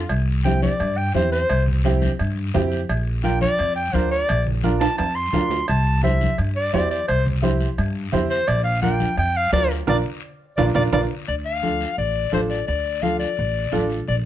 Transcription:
0.09 upright bass C2, cowbell, long guiro
0.44 upright piano C4 E4 G4, clarinet G5, high conga, short guiro
0.62 clarinet D5, high conga, short guiro
0.79 upright bass G2, cowbell, long guiro
0.97 clarinet G5
1.15 upright bass E2, upright piano C4 E4 G4, clarinet C5, high conga, short guiro
1.32 clarinet C5, short guiro
1.50 upright bass C2, cowbell, long guiro
1.67 low conga
1.84 upright piano C4 E4 G4, high conga, short guiro
2.02 high conga, short guiro
2.19 upright bass G2, cowbell, long guiro
2.54 upright bass F2, upright piano C4 E4 G4, high conga, low conga, low timbale, short guiro
2.72 short guiro
2.89 upright bass A#1, cowbell, long guiro
3.23 upright piano D4 F4 A#4, clarinet G5, high conga, short guiro
3.41 clarinet D5, high conga, short guiro
3.58 upright bass F2, cowbell, long guiro
3.76 clarinet G5
3.93 upright bass D2, upright piano D4 F4 A#4, clarinet C5, high conga, short guiro
4.11 clarinet D5, short guiro
4.28 upright bass A#1, cowbell, long guiro
4.46 low conga
4.64 upright piano D4 F4 A#4, high conga, short guiro
4.80 clarinet A5, high timbale, short guiro
4.98 upright bass F2, clarinet A5, cowbell, high timbale, long guiro
5.15 clarinet C6
5.33 upright bass D2, upright piano D4 F4 A#4, high conga, low conga, low timbale, short guiro
5.51 low timbale, short guiro
5.68 upright bass C2, clarinet A5, cowbell, long guiro
6.03 upright piano E4 G4 C5, clarinet E5, high conga, short guiro
6.21 high conga, short guiro
6.38 upright bass G2, cowbell, long guiro
6.56 clarinet D5
6.73 upright bass E2, upright piano E4 G4 C5, clarinet D5, high conga, low timbale, short guiro
6.91 clarinet D5, short guiro
7.08 upright bass C2, clarinet C5, cowbell, long guiro
7.26 low conga
7.42 upright piano E4 G4 C5, high conga, short guiro
7.60 short guiro
7.78 upright bass G2, cowbell, long guiro
8.12 upright bass E2, upright piano E4 G4 C5, high conga, low conga, short guiro
8.30 clarinet C5, short guiro
8.48 upright bass A#1, clarinet D5, cowbell, long guiro
8.64 clarinet F5
8.82 upright piano D4 F4 A#4, clarinet G5, high conga, short guiro
9.00 high conga, short guiro
9.17 upright bass F2, clarinet G5, cowbell, long guiro
9.37 clarinet F5
9.52 upright bass D2, upright piano D4 F4 A#4, clarinet D5, high conga, low timbale, short guiro
9.70 short guiro
9.87 upright bass A#1, upright piano D4 F4 A#4, clarinet D5, low conga, high timbale, long guiro
10.57 upright bass A#1, upright piano D4 F4 A#4, clarinet D5, low conga, high timbale, long guiro
10.75 upright bass A#1, upright piano D4 F4 A#4, clarinet D5, low conga, high timbale, long guiro
10.93 upright bass A#1, upright piano D4 F4 A#4, clarinet D5, low conga, high timbale, long guiro
11.28 upright bass D2, soprano saxophone D5, high conga, long guiro
11.45 soprano saxophone F5
11.62 upright piano D4 F4 A4, high conga, short guiro
11.81 short guiro
11.97 upright bass A1, soprano saxophone D5, high conga, long guiro
12.32 upright bass A1, upright piano D4 F4 A4, soprano saxophone C5, high conga, short guiro
12.50 soprano saxophone D5, short guiro
12.67 upright bass D2, soprano saxophone D5, high conga, long guiro
13.02 upright piano D4 F4 A4, soprano saxophone F5, high conga, short guiro
13.20 soprano saxophone D5, short guiro
13.37 upright bass A1, high conga, long guiro
13.72 upright bass A1, upright piano D4 F4 A4, high conga, short guiro
13.90 short guiro
14.07 upright bass A#1, soprano saxophone D5, high conga, long guiro

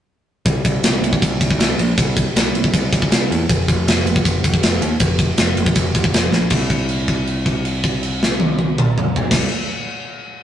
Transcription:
0.46 picked electric bass C2, kick, ride
0.65 picked electric bass C2, kick, ride
0.83 picked electric bass C2, snare, ride
1.01 picked electric bass C2, ride
1.13 kick
1.22 picked electric bass C2, kick, ride
1.41 picked electric bass C2, kick, ride
1.50 kick
1.59 picked electric bass C2, snare, ride
1.79 picked electric bass A#1, ride
1.98 picked electric bass C2, kick, ride
2.17 kick, ride
2.36 picked electric bass C2, snare, ride
2.55 picked electric bass C2, ride
2.64 kick
2.74 picked electric bass C2, kick, ride
2.93 picked electric bass C2, kick, ride
3.02 kick
3.11 picked electric bass C2, snare, ride
3.30 picked electric bass E2, ride
3.49 picked electric bass F1, kick, ride
3.68 picked electric bass F1, kick, ride
3.86 picked electric bass F1, snare, ride
4.04 picked electric bass F1, ride
4.16 kick
4.25 picked electric bass F1, kick, ride
4.44 picked electric bass F1, kick, ride
4.54 kick
4.62 picked electric bass F1, snare, ride
4.81 picked electric bass D#2, ride
5.00 picked electric bass F1, kick, ride
5.19 kick, ride
5.38 picked electric bass F1, snare, ride
5.57 picked electric bass F1, ride
5.66 kick
5.75 picked electric bass F1, kick, ride
5.95 picked electric bass F1, kick, ride
6.04 kick
6.13 picked electric bass F1, snare, ride
6.31 picked electric bass A#1, snare
6.50 picked electric bass C2, kick, crash
6.70 kick, crash
6.89 crash
7.08 kick, crash
7.27 crash
7.46 kick, crash
7.65 crash
7.84 kick, crash
8.03 crash
8.23 snare
8.40 high tom
8.59 high tom
8.78 mid tom
8.98 mid tom
9.16 floor tom
9.31 picked electric bass C2, kick, snare, crash

